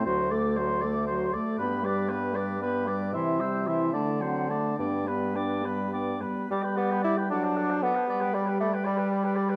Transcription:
<<
  \new Staff \with { instrumentName = "Flute" } { \time 6/8 \key g \major \tempo 4. = 77 c'''8 d'''8 c'''8 d'''8 c'''8 d'''8 | b''8 d'''8 b''8 d'''8 b''8 d'''8 | c'''8 e'''8 c'''8 a''8 fis''8 a''8 | g''8 b''8 g''8 b''8 g''8 b''8 |
d'''16 b''16 d'''16 b''16 d'''16 b''16 fis''16 a''16 fis''16 a''16 fis''16 a''16 | b''16 g''16 b''16 g''16 b''16 g''16 b''16 g''16 b''16 g''16 b''16 g''16 | }
  \new Staff \with { instrumentName = "Oboe" } { \time 6/8 \key g \major c''8 d''8 c''8 d''8 c''8 d''8 | b'8 d''8 b'8 d''8 b'8 d''8 | e''8 c''8 e''8 d''8 c''8 d''8 | d''8 b'8 d''8 b'8 d''8 b'8 |
d''16 g''16 d''16 g''16 d''16 g''16 d''16 fis''16 d''16 fis''16 d''16 fis''16 | d''16 b'16 d''16 b'16 d''16 b'16 d''16 b'16 d''16 b'16 d''16 b'16 | }
  \new Staff \with { instrumentName = "Clarinet" } { \time 6/8 \key g \major fis'8 a'8 fis'8 a'8 fis'8 a'8 | g'8 b'8 g'8 b'8 g'8 b'8 | e'8 g'8 e'8 d'8 c'8 d'8 | d'8 b8 d'8 b8 d'8 b8 |
g'16 b'16 g'16 b'16 g'16 b'16 a'16 c''16 a'16 c''16 a'16 c''16 | g'16 b'16 g'16 b'16 g'16 b'16 g'16 b'16 g'16 b'16 g'16 b'16 | }
  \new Staff \with { instrumentName = "Bassoon" } { \clef bass \time 6/8 \key g \major d,2~ d,8 r8 | g,2. | c4. d4. | g,2~ g,8 r8 |
g8 b8 e'8 d'4 b8~ | b8 g8 a8 g4. | }
  \new Staff \with { instrumentName = "French horn" } { \clef bass \time 6/8 \key g \major fis8 a8 fis8 a8 fis8 a8 | b8 g8 b8 g8 b8 g8 | e8 g8 e8 a8 fis8 a8 | b8 g8 b8 g8 b8 g8 |
g4. fis4. | g2. | }
>>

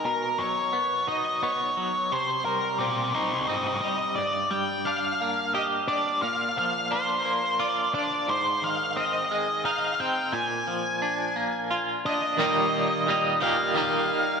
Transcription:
<<
  \new Staff \with { instrumentName = "Lead electric guitar" } { \time 6/8 \key ees \major \tempo 4. = 58 bes'8 des''4 dis''8 des''4 | c''8 bes'8 d''8 c''8 ees''8 ees''8 | d''8 g''8 f''4 ees''8 d''8 | f''8 f''8 c''4 d''8 d''8 |
c''8 f''8 ees''4 f''8 g''8 | aes''2~ aes''8 ees''8~ | ees''4. f''4. | }
  \new Staff \with { instrumentName = "Overdriven electric guitar" } { \time 6/8 \key ees \major b,8 fis8 b8 dis'8 b8 fis8 | c8 g8 c'8 ees'8 c'8 g8 | g,8 g8 d'8 bes8 g'8 d'8 | bes,8 f8 d'8 bes8 f'8 d'8 |
aes,8 ees8 c'8 aes8 ees'8 c'8 | bes,8 f8 d'8 bes8 f'8 d'8 | <ees, bes, ees g bes ees'>4 <ees g bes ees'>8 <ees, bes, ees g bes ees'>8 <ees g bes ees'>4 | }
>>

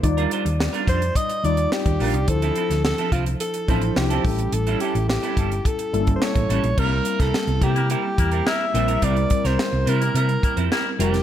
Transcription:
<<
  \new Staff \with { instrumentName = "Alto saxophone" } { \time 4/4 \key c \mixolydian \tempo 4 = 107 r4. c''8 ees''8 d''8 g'4 | a'4 a'8 f'8 a'4 g'4 | a'8 g'8 g'4 a'8.~ a'32 c''32 cis''4 | bes'8. a'8. g'8 g'4 e''4 |
d''8. c''8. bes'8 bes'4 r8 g'8 | }
  \new Staff \with { instrumentName = "Horn section" } { \time 4/4 \key c \mixolydian r1 | r1 | r1 | r4. r16 <g e' bes'>16 r8 <g e' bes'>16 r16 <g e' bes'>8 r8 |
r4. r16 <g e' bes'>16 r8 <g e' bes'>16 r16 <g e' bes'>8 r8 | }
  \new Staff \with { instrumentName = "Clean electric guitar" } { \time 4/4 \key c \mixolydian r16 <g d' f' bes'>16 <g d' f' c''>16 r8 <g d' f' bes'>16 <g d' f' c''>16 r4. r16 <g d' f' bes'>16 r16 | r16 <f c' e' a'>16 <f c' e' a'>16 r8 <f c' e' a'>16 <f c' e' c''>16 r8. <f c' e' a'>16 r8 <f c' e' a'>16 r8 | r16 <g cis' e' a'>16 <g cis' e' a'>16 r8 <g cis' e' a'>16 <g cis' e' a'>16 r4. r16 <g cis' e' a'>16 r16 | <g c' e' bes'>16 r8 <g c' e' bes'>16 r8 <g c' e' bes'>16 r16 <g c' e' bes'>16 r8 <g c' e' bes'>16 r8 <g c' e' c''>16 <g c' e' bes'>16 |
<g c' e' bes'>16 r8 <g c' e' bes'>16 r8 <g c' e' c''>16 r16 <g c' e' bes'>16 r8 <g c' e' c''>16 r8 <g c' e' bes'>16 r16 | }
  \new Staff \with { instrumentName = "Tine electric piano" } { \time 4/4 \key c \mixolydian <g ees' f' d''>4. r4 <g ees' f' d''>4 r8 | <f d' e' c''>4. r4 <f d' e' c''>4 <g cis' e' a'>8~ | <g cis' e' a'>4 r4. <g bes cis' e' a'>4 r8 | <g bes c' e' a'>4. r2 <g c' e' bes'>8 |
<g c' e' bes'>4. r2 <g c' e' bes'>8 | }
  \new Staff \with { instrumentName = "Fingered electric bass" } { \clef bass \time 4/4 \key c \mixolydian ees,8 r16 ees,8 r16 f,8 r8 ees,8 r16 ees,16 bes,,16 c,16 | d,8 r16 d,8 r16 c,8 r8 a,,8 c,8 a,,8 | a,,8 r16 a,,8 r16 g,,8 r8 g,,8 r16 a,,16 a,,16 bes,,16 | c,8 r16 c,16 r16 c,16 c8. r16 e,8 r8 bes,,8 |
c,8 r16 c,16 r16 c,16 c8 c8 r16 f,16 r8 f,,8 | }
  \new DrumStaff \with { instrumentName = "Drums" } \drummode { \time 4/4 <hh bd>16 hh16 hh16 hh16 sn16 hh16 <hh bd>16 hh16 <hh bd>16 hh16 hh16 hh16 sn16 <hh bd>16 hho16 hh16 | <hh bd>16 hh16 hh16 <hh sn>16 sn16 hh16 <hh bd>16 hh16 hh16 hh16 <hh bd>16 hh16 sn16 hh16 <hho bd>16 hh16 | hh16 hh16 hh16 hh16 sn16 hh16 <hh bd>16 hh16 <hh bd>16 hh16 hh16 <hh bd>16 sn16 <hh bd>16 hh16 hh16 | <cymc bd>8 hh16 <hh bd sn>16 sn16 hh16 <hh bd>16 hh16 hh8 <hh bd>16 hh16 sn8 hh16 hh16 |
<hh bd>16 hh16 <hh bd>16 <hh sn>16 sn8 hh16 hh16 hh16 hh16 <hh bd>16 hh16 sn8 hh16 <hh sn>16 | }
>>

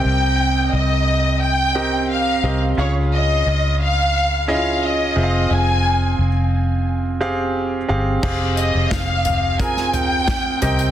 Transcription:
<<
  \new Staff \with { instrumentName = "Violin section" } { \time 4/4 \key f \minor \tempo 4 = 88 g''4 ees''4 g''4 f''8. r16 | des''8 ees''4 f''4 f''8 ees''4 | aes''4 r2. | r8 ees''8 f''4 aes''8 g''4 g''8 | }
  \new Staff \with { instrumentName = "Grand piano" } { \time 4/4 \key f \minor <c c' g' bes' ees''>4 r4. <c' g' bes' ees''>4 <c' g' bes' ees''>8 | <des des' f' aes' f''>4. r4 <des' e' f' aes' ees''>4 <c' f' aes' e'' f''>8~ | <c' f' aes' e'' f''>4 r4. <c' g' aes' f''>4 <c' g' aes' f''>8 | <c' g' aes' f''>4. r8 <c' f' aes' bes'>4. <c c' g' bes' ees''>8 | }
  \new Staff \with { instrumentName = "Fingered electric bass" } { \clef bass \time 4/4 \key f \minor c,4 c,2~ c,8 c,8 | des,4 des,2~ des,8 f,,8 | f,,4 f,,2~ f,,8 g,,8 | f,,8. f,,16 r2 r8 c,8 | }
  \new DrumStaff \with { instrumentName = "Drums" } \drummode { \time 4/4 r4 r4 r4 r4 | r4 r4 r4 r4 | r4 r4 r4 r4 | <cymc bd>8 hh8 <hh bd sn>8 <hh tomfh>8 <hh bd>16 sn16 <hh tomfh>8 <hh bd sn>8 <hh tomfh>16 hh16 | }
>>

